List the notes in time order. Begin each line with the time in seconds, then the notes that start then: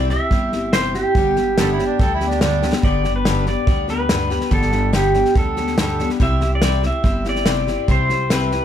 Already playing: C2 C3 G3 C4 E4 D5
0.10 C4 E4 G4 E5, snare
0.31 G1 G3 C4 E4 G4, kick, snare
0.52 C4 E4 G4, snare
0.73 C3 G3 C4 E4 G4 C5, snare, hi-hat pedal
0.94 C4 E4 G4, snare
1.15 G1 G2 D3 G3 B3 D4 G4, kick, snare
1.36 G3 B3 D4 G4, snare
1.58 G2 D3 G3 B3 D4 G4 A4, snare, hi-hat pedal
1.72 E4
1.79 G3 B3 D4 G4, snare
1.87 D4
1.99 D2 G3 B3 D4 G4 A4, kick, snare
2.14 E4
2.21 G3 B3 D4 G4, snare
2.29 D4, snare
2.41 G2 D3 G3 B3 D4 G4, snare, hi-hat pedal
2.63 G3 B3 D4 G4, snare
2.73 snare
2.83 G1 G2 D3 G3 B3 D4 G4 D5, kick, snare
3.04 G3 B3 D4 G4, snare
3.16 B4
3.25 G2 D3 G3 B3 D4 G4, snare, hi-hat pedal
3.46 G3 B3 D4 G4 D5, snare
3.67 D2 G3 B3 D4 G4, kick, snare
3.88 G3 B3 D4 G4 B4, snare
4.09 G2 D3 G3 B3 D4 G4, snare, hi-hat pedal
4.30 G3 B3 D4 G4, snare
4.41 snare
4.51 G1 G2 D3 G3 B3 D4 G4 A4, kick, snare
4.62 snare
4.72 G3 B3 D4 G4, snare
4.93 G2 D3 G3 B3 D4 G4, snare, hi-hat pedal
5.14 G3 B3 D4 G4, snare
5.25 snare
5.35 D2 G3 B3 D4 G4 A4, kick, snare
5.57 G3 B3 D4 G4, snare
5.67 snare
5.78 G2 D3 G3 B3 D4 G4 A4, snare, hi-hat pedal
5.99 G3 B3 D4 G4, snare
6.10 snare
6.20 C2 C3 G3 C4 E4 G4 E5, kick, snare
6.41 C4 E4 G4, snare
6.55 D5
6.62 C3 G3 C4 E4 G4, snare, hi-hat pedal
6.82 C4 E4 G4, snare
6.87 E5
7.03 G1 G3 C4 E4 G4, kick, snare
7.25 C4 E4 G4, snare
7.29 D5
7.36 snare
7.46 C3 G3 C4 E4 G4, snare, hi-hat pedal
7.67 C4 E4 G4, snare
7.88 C2 C3 G3 C4 E4 G4 C5, kick, snare
8.10 C4 E4 G4, snare
8.30 C3 G3 C4 E4 G4 B4, snare, hi-hat pedal
8.51 C4 E4 G4, snare